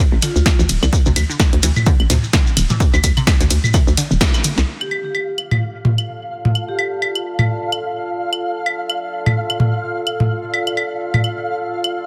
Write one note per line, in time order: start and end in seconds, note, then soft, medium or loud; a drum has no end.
0.12 0.18 A1 medium
0.22 0.27 D3 medium
0.22 0.59 F4 medium
0.22 snare medium
0.22 open hi-hat medium
0.22 ride medium
0.22 claves medium
0.22 maracas loud
0.36 0.42 D2 medium
0.36 maracas soft
0.46 kick loud
0.46 snare loud
0.46 snare medium
0.46 ride medium
0.46 maracas soft
0.59 0.65 D2 medium
0.59 0.63 E3 medium
0.59 snare soft
0.59 maracas soft
0.69 0.77 D1 medium
0.69 open hi-hat loud
0.69 ride medium
0.69 maracas medium
0.83 0.89 C2 loud
0.83 0.85 D3 medium
0.83 claves medium
0.83 maracas soft
0.93 kick loud
0.93 ride medium
0.93 maracas soft
1.06 1.12 D2 loud
1.06 1.08 C3 loud
1.06 maracas soft
1.16 1.24 D2 medium
1.16 open hi-hat medium
1.16 ride medium
1.16 claves medium
1.16 maracas medium
1.30 1.33 D3 medium
1.30 maracas soft
1.40 kick loud
1.40 snare loud
1.40 snare medium
1.40 ride medium
1.40 claves medium
1.40 maracas medium
1.53 1.59 D2 loud
1.53 open hi-hat soft
1.63 1.71 D2 medium
1.63 1.68 E3 medium
1.63 open hi-hat medium
1.63 ride medium
1.63 maracas loud
1.76 mid tom medium
1.76 claves medium
1.76 maracas soft
1.86 1.89 D3 medium
1.86 kick loud
1.86 ride medium
1.86 maracas soft
2.00 2.06 A1 medium
2.00 claves medium
2.10 2.18 D2 loud
2.10 2.13 C3 loud
2.10 snare medium
2.10 open hi-hat medium
2.10 mid tom medium
2.10 ride medium
2.10 maracas medium
2.24 maracas soft
2.33 2.38 D3 medium
2.33 kick loud
2.33 snare loud
2.33 snare medium
2.33 ride medium
2.33 maracas medium
2.47 maracas soft
2.57 2.65 D1 medium
2.57 open hi-hat medium
2.57 ride medium
2.57 claves medium
2.57 maracas medium
2.70 2.74 E3 medium
2.70 snare soft
2.70 mid tom medium
2.70 maracas soft
2.80 kick loud
2.80 ride medium
2.80 maracas soft
2.94 3.00 D2 loud
2.94 2.96 D3 medium
2.94 claves medium
2.94 maracas soft
3.04 3.12 D2 medium
3.04 kick medium
3.04 open hi-hat medium
3.04 ride medium
3.04 claves medium
3.04 maracas medium
3.17 3.19 C3 loud
3.17 ride soft
3.17 claves medium
3.17 maracas soft
3.27 kick loud
3.27 snare loud
3.27 ride medium
3.27 claves medium
3.27 maracas soft
3.40 3.47 D2 medium
3.40 3.44 D3 medium
3.40 open hi-hat soft
3.40 maracas soft
3.50 3.59 D2 medium
3.50 open hi-hat medium
3.50 ride medium
3.50 maracas medium
3.64 mid tom medium
3.64 claves soft
3.64 maracas soft
3.74 3.79 E3 medium
3.74 kick loud
3.74 ride medium
3.74 claves medium
3.74 maracas soft
3.87 3.93 D2 loud
3.87 maracas soft
3.97 4.00 D3 medium
3.97 snare medium
3.97 open hi-hat medium
3.97 ride medium
3.97 maracas medium
4.11 4.17 D1 loud
4.11 maracas soft
4.21 4.24 C3 loud
4.21 kick loud
4.21 snare loud
4.21 ride medium
4.21 maracas medium
4.34 snare soft
4.34 claves medium
4.34 maracas soft
4.44 4.49 D3 medium
4.44 open hi-hat medium
4.44 ride medium
4.44 maracas medium
4.57 4.64 C2 loud
4.57 snare medium
4.57 maracas soft
4.68 12.06 F4 medium
4.68 12.06 F5 medium
4.81 5.02 G4 medium
4.81 claves medium
4.91 claves soft
5.05 5.11 G4 medium
5.15 5.23 G4 medium
5.15 claves soft
5.28 12.06 A4 medium
5.38 claves medium
5.51 mid tom medium
5.51 claves soft
5.57 12.06 A5 medium
5.66 12.06 D5 medium
5.85 mid tom medium
5.98 claves medium
6.45 mid tom medium
6.55 claves medium
6.69 7.15 G4 medium
6.79 claves medium
7.02 claves medium
7.15 claves medium
7.39 mid tom medium
7.39 claves medium
7.72 claves medium
8.33 claves medium
8.66 claves medium
8.90 claves medium
9.26 mid tom medium
9.26 claves medium
9.50 claves medium
9.60 mid tom medium
10.07 claves medium
10.20 mid tom medium
10.54 claves medium
10.67 claves medium
10.77 claves medium
11.14 mid tom medium
11.14 claves medium
11.24 claves medium
11.84 claves medium